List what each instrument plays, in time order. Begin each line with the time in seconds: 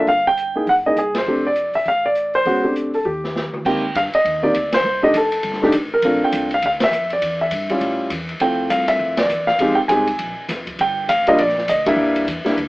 0.07 upright bass G1, grand piano F5, kick, open hi-hat
0.27 grand piano G5
0.37 closed hi-hat
0.55 grand piano A#3 D#4 E4 G#4
0.67 upright bass F#1, grand piano F#5, kick, open hi-hat
0.86 grand piano A#3 D#4 E4 G#4 D#5
0.96 upright bass C2, grand piano G#4, closed hi-hat
1.15 grand piano C5, snare, ride
1.26 upright bass F1, grand piano A3 C4 D4 G4
1.47 grand piano D5
1.56 closed hi-hat
1.73 grand piano E5, muted upright bass stroke, open hi-hat
1.86 upright bass A1, grand piano F5, kick, open hi-hat
2.06 grand piano D5
2.15 closed hi-hat
2.34 grand piano C5, open hi-hat
2.45 upright bass F1, grand piano G#3 B3 C#4 F#4, kick, open hi-hat
2.63 grand piano A3 C4 D4 G4
2.76 closed hi-hat
2.94 grand piano A4, open hi-hat
3.05 upright bass D#2, grand piano G4
3.24 snare
3.36 snare
3.54 muted upright bass stroke, mid tom
3.65 upright bass G#2, grand piano A#3 C4 D#4 G4 G5, kick, crash
3.95 upright bass G2, grand piano F5, kick, hi-hat pedal, ride
4.13 grand piano D#5, muted upright bass stroke, ride
4.25 upright bass D#2, kick, ride
4.43 grand piano A#3 C4 D#4 G4 D5
4.54 upright bass D2, kick, hi-hat pedal, ride
4.73 grand piano C5, snare, ride
4.84 upright bass C2
5.03 grand piano A3 D4 D#4 G4 D#5
5.13 upright bass F1, grand piano A4, kick, hi-hat pedal, ride
5.32 ride
5.43 upright bass G1, kick, ride
5.53 snare
5.62 grand piano A3 D4 D#4 G4, snare
5.72 upright bass A1, kick, hi-hat pedal, ride
5.94 grand piano A#4
6.02 upright bass A#1, grand piano A3 C4 D4 F4, kick, ride
6.21 grand piano G5, muted upright bass stroke
6.32 upright bass C2, kick, hi-hat pedal, ride
6.51 grand piano F5, ride
6.62 upright bass D2, grand piano F5, kick, ride
6.80 grand piano E5, snare, ride
6.92 upright bass F2, hi-hat pedal
7.10 grand piano D5, ride
7.22 upright bass E2, kick, ride
7.41 grand piano E5
7.51 upright bass G2, kick, hi-hat pedal, ride
7.69 grand piano G3 C#4 E4 F4, ride
7.80 upright bass A2, kick, ride
8.10 upright bass E2, kick, hi-hat pedal, ride
8.29 ride
8.40 upright bass F2, grand piano A3 C4 E4 F4 G5, kick, ride
8.70 upright bass G2, grand piano F5, kick, hi-hat pedal, ride
8.88 grand piano E5, ride
8.99 upright bass F2, kick
9.17 grand piano D5, snare, ride
9.29 upright bass E2, hi-hat pedal
9.47 grand piano F5, snare
9.59 upright bass F2, grand piano G#3 C4 D#4 G4, kick, ride
9.75 grand piano G5, muted upright bass stroke
9.88 upright bass C2, grand piano G#3 C4 D#4 G4 G#5, kick, hi-hat pedal, ride
10.07 ride
10.19 upright bass A#1, kick, ride
10.37 muted upright bass stroke
10.48 upright bass F1, kick, snare, hi-hat pedal, ride
10.67 kick, ride
10.79 upright bass G1, grand piano G5, kick, ride
11.08 upright bass A1, grand piano F5, kick, hi-hat pedal, ride
11.27 grand piano G3 A#3 D4 F4 D#5, ride
11.38 upright bass A#1, grand piano D5, kick, ride
11.48 snare
11.58 snare
11.68 upright bass D2, grand piano D#5, kick, hi-hat pedal, ride
11.86 grand piano G3 A#3 D4 E4 E5, kick, ride
11.96 upright bass C2
12.16 ride
12.27 upright bass E2, kick, hi-hat pedal, ride
12.45 grand piano G3 A#3 D4 E4, muted upright bass stroke, snare, ride
12.57 upright bass D2, kick, ride